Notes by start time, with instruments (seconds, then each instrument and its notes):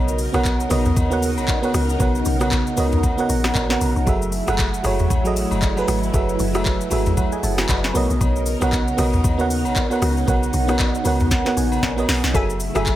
Already playing: log drum bass B1, string machine C#3 D#4 A#4, fm electric piano B3 F#4 A#4 C#5 D#5
0.08 shaker
0.18 open hi-hat, shaker
0.33 log drum bass B1, fm electric piano B3 F#4 A#4 C#5 F#5, cross-stick, high agogo, shaker
0.45 kick, clap, shaker
0.60 shaker
0.69 log drum bass B1, fm electric piano B3 F#4 A#4 C#5 D#5, cross-stick, open hi-hat, high agogo, shaker
0.85 mid tom, shaker
0.97 log drum bass D#2, kick, high agogo, shaker
1.10 fm electric piano B3 F#4 A#4 C#5 F#5, shaker
1.23 open hi-hat, shaker
1.37 log drum bass B1, high agogo, shaker
1.48 kick, clap, low woodblock, shaker
1.62 fm electric piano B3 F#4 A#4 C#5 F#5, high agogo, shaker
1.74 log drum bass C#2, cross-stick, open hi-hat, shaker
1.89 shaker
1.99 log drum bass B1, fm electric piano B3 F#4 A#4 C#5 F#5, kick, high agogo, shaker
2.15 shaker
2.25 log drum bass B1, open hi-hat, shaker
2.39 fm electric piano B3 F#4 A#4 C#5 F#5, cross-stick, high agogo, shaker
2.52 kick, clap, shaker
2.67 shaker
2.76 log drum bass C#2, fm electric piano B3 F#4 A#4 C#5 D#5, open hi-hat, high agogo, shaker
2.92 mid tom, shaker
3.03 kick, high agogo, shaker
3.17 fm electric piano B3 F#4 A#4 C#5 F#5, shaker
3.29 log drum bass A#1, fm electric piano A#5, open hi-hat, shaker
3.44 cross-stick, snare, high agogo, shaker
3.55 log drum bass A#1, fm electric piano F#5, kick, clap, low woodblock, shaker
3.69 fm electric piano B3 F#4 A#4 C#5 F#5, snare, high agogo, shaker
3.81 log drum bass B1, open hi-hat, shaker
3.96 log drum bass B1, shaker
4.06 log drum bass F#1, fm electric piano F#3 F#4 G#4 A4 E5, string machine F#3 A3 E4, kick, high agogo, shaker
4.22 shaker
4.32 open hi-hat, shaker
4.46 log drum bass F#1, fm electric piano F#3 F#4 G#4 A4 F#5, cross-stick, high agogo, shaker
4.59 kick, clap, shaker
4.74 shaker
4.83 log drum bass F#1, fm electric piano F#3 F#4 G#4 A4 C#5, cross-stick, open hi-hat, high agogo, shaker
4.99 mid tom, shaker
5.10 log drum bass A1, kick, high agogo, shaker
5.24 fm electric piano F#3 F#4 G#4 A4 D#5, shaker
5.36 open hi-hat, shaker
5.51 log drum bass F#1, high agogo, shaker
5.62 kick, clap, low woodblock, shaker
5.76 fm electric piano F#3 F#4 G#4 A4 B4, high agogo, shaker
5.88 log drum bass G#1, cross-stick, open hi-hat, shaker
6.03 shaker
6.12 log drum bass F#1, fm electric piano F#3 F#4 G#4 A4 E5, kick, high agogo, shaker
6.29 shaker
6.39 log drum bass F#1, open hi-hat, shaker
6.53 fm electric piano F#3 F#4 G#4 A4 E5, cross-stick, high agogo, shaker
6.66 kick, clap, shaker
6.81 shaker
6.90 log drum bass G#1, fm electric piano F#3 F#4 G#4 A4 E5, open hi-hat, high agogo, shaker
7.06 mid tom, shaker
7.17 fm electric piano C#5 F#5, kick, high agogo, shaker
7.32 fm electric piano D#5 G#5, shaker
7.43 log drum bass F#1, fm electric piano E5 A5, open hi-hat, shaker
7.58 cross-stick, snare, high agogo, shaker
7.69 log drum bass F#1, fm electric piano F#5 B5, kick, clap, low woodblock, shaker
7.84 fm electric piano G#5 C#6, snare, high agogo, shaker
7.94 log drum bass B1, string machine C#3 D#4 A#4, fm electric piano B3 F#4 A#4 C#5 D#5, open hi-hat, shaker
8.10 log drum bass B1, shaker
8.21 log drum bass B1, kick, high agogo, shaker
8.36 shaker
8.46 open hi-hat, shaker
8.60 log drum bass B1, fm electric piano B3 F#4 A#4 C#5 F#5, cross-stick, high agogo, shaker
8.73 kick, clap, shaker
8.88 shaker
8.97 log drum bass B1, fm electric piano B3 F#4 A#4 C#5 D#5, cross-stick, open hi-hat, high agogo, shaker
9.13 mid tom, shaker
9.24 log drum bass D#2, kick, high agogo, shaker
9.38 fm electric piano B3 F#4 A#4 C#5 F#5, shaker
9.50 open hi-hat, shaker
9.65 log drum bass B1, high agogo, shaker
9.76 kick, clap, low woodblock, shaker
9.90 fm electric piano B3 F#4 A#4 C#5 F#5, high agogo, shaker
10.02 log drum bass C#2, string machine B3, cross-stick, open hi-hat, shaker
10.17 shaker
10.26 log drum bass B1, fm electric piano B3 F#4 A#4 C#5 F#5, kick, high agogo, shaker
10.43 shaker
10.53 log drum bass B1, open hi-hat, shaker
10.67 fm electric piano B3 F#4 A#4 C#5 F#5, cross-stick, high agogo, shaker
10.79 kick, clap, low woodblock, shaker
10.95 shaker
11.04 log drum bass C#2, fm electric piano B3 F#4 A#4 C#5 F#5, open hi-hat, high agogo, shaker
11.20 mid tom, shaker
11.31 kick, snare, high agogo, shaker
11.45 fm electric piano B3 F#4 A#4 C#5 F#5, snare, shaker
11.57 log drum bass A#1, fm electric piano G#5, open hi-hat, shaker
11.72 high agogo, shaker
11.83 log drum bass A#1, fm electric piano F#5, kick, snare, low woodblock, shaker
11.96 fm electric piano B3 F#4 A#4 C#5 D#5, high agogo, shaker
12.09 log drum bass B1, snare, open hi-hat, shaker
12.24 log drum bass B1, snare, shaker
12.33 log drum bass F#1, string machine C#3 A3 E4, fm electric piano F#3 F#4 G#4 A4 E5, synth pluck A4 E5 G#5, kick, high agogo, shaker
12.50 shaker
12.60 open hi-hat, shaker
12.74 log drum bass F#1, fm electric piano F#3 F#4 G#4 A4 E5, synth pluck A4 E5 G#5, cross-stick, high agogo, shaker
12.86 kick, clap, shaker